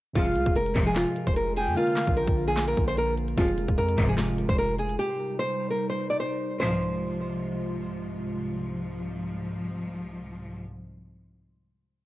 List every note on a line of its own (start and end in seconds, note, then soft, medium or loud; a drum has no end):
0.13 0.37 F1 loud
0.13 0.25 G#2 medium
0.13 1.72 C3 medium
0.13 0.25 C3 medium
0.13 1.75 C3 medium
0.13 0.25 F3 medium
0.13 1.73 G#3 medium
0.13 1.75 G#3 medium
0.13 4.95 F4 medium
0.13 0.54 F4 loud
0.13 1.74 F4 medium
0.13 0.53 F5 loud
0.13 kick loud
0.13 closed hi-hat medium
0.18 1.74 G#4 medium
0.26 closed hi-hat medium
0.36 0.46 C2 loud
0.36 closed hi-hat medium
0.46 0.55 F1 loud
0.46 kick medium
0.46 closed hi-hat soft
0.56 0.75 F1 loud
0.56 0.85 A#4 medium
0.56 closed hi-hat medium
0.66 closed hi-hat medium
0.76 1.05 F1 loud
0.76 1.14 G#2 loud
0.76 1.14 C3 loud
0.76 1.14 F3 loud
0.76 kick loud
0.87 0.94 G#4 medium
0.87 closed hi-hat medium
0.96 1.25 F4 medium
0.96 snare loud
0.96 clap medium
0.96 closed hi-hat medium
1.07 closed hi-hat medium
1.16 closed hi-hat medium
1.27 1.69 F1 loud
1.27 1.34 C5 medium
1.27 kick medium
1.27 closed hi-hat medium
1.36 1.52 A#4 medium
1.36 closed hi-hat medium
1.56 1.72 G#4 medium
1.56 1.76 G5 medium
1.56 closed hi-hat medium
1.67 1.76 F2 loud
1.67 closed hi-hat medium
1.74 3.33 D3 medium
1.74 3.36 D3 medium
1.74 3.34 A#3 medium
1.74 3.36 A#3 medium
1.74 3.35 F4 medium
1.74 2.15 F4 loud
1.74 2.14 F5 loud
1.74 closed hi-hat medium
1.78 3.35 A#4 medium
1.87 closed hi-hat medium
1.97 snare loud
1.97 clap medium
1.97 closed hi-hat medium
2.07 2.27 A#1 loud
2.07 kick medium
2.07 closed hi-hat medium
2.17 2.46 A#4 medium
2.17 closed hi-hat medium
2.27 2.75 A#1 loud
2.27 kick loud
2.27 closed hi-hat medium
2.48 2.63 G#4 medium
2.48 closed hi-hat medium
2.57 snare loud
2.57 clap loud
2.57 closed hi-hat medium
2.68 2.83 A#4 medium
2.68 closed hi-hat medium
2.77 3.35 A#1 loud
2.77 kick medium
2.77 closed hi-hat medium
2.88 2.95 C5 medium
2.88 closed hi-hat medium
2.97 3.13 A#4 medium
2.97 closed hi-hat medium
3.18 closed hi-hat medium
3.28 closed hi-hat medium
3.36 3.67 F1 loud
3.36 3.47 G#2 medium
3.36 4.95 C3 medium
3.36 3.47 C3 medium
3.36 6.57 C3 medium
3.36 3.47 F3 medium
3.36 4.95 G#3 medium
3.36 4.97 G#3 medium
3.36 3.75 F4 medium
3.36 4.96 F4 medium
3.36 kick loud
3.36 closed hi-hat medium
3.40 4.97 G#4 medium
3.48 closed hi-hat medium
3.58 closed hi-hat medium
3.68 3.78 D#1 loud
3.68 kick medium
3.68 closed hi-hat medium
3.78 3.97 F2 loud
3.78 4.07 A#4 medium
3.78 closed hi-hat loud
3.89 closed hi-hat medium
3.98 4.47 F1 loud
3.98 4.36 G#2 loud
3.98 4.36 C3 loud
3.98 4.36 F3 loud
3.98 kick loud
4.09 4.16 G#4 medium
4.09 closed hi-hat medium
4.18 4.47 F4 medium
4.18 snare loud
4.18 clap loud
4.18 closed hi-hat medium
4.29 closed hi-hat medium
4.38 closed hi-hat medium
4.49 4.97 F1 loud
4.49 4.56 C5 medium
4.49 kick medium
4.49 closed hi-hat medium
4.58 4.74 A#4 medium
4.58 closed hi-hat medium
4.79 4.94 G#4 medium
4.79 closed hi-hat medium
4.89 closed hi-hat medium
4.99 6.58 G3 medium
4.99 6.58 D#4 medium
4.99 5.37 G4 loud
5.39 5.68 C5 medium
5.70 5.86 A#4 medium
5.89 6.05 C5 medium
6.10 6.17 D5 medium
6.20 6.58 C5 medium
6.60 10.56 C2 medium
6.60 10.56 G#2 medium
6.60 10.56 C3 medium
6.60 10.56 F3 loud
6.60 10.56 G#3 medium
6.60 10.56 F4 medium
6.60 7.77 C5 medium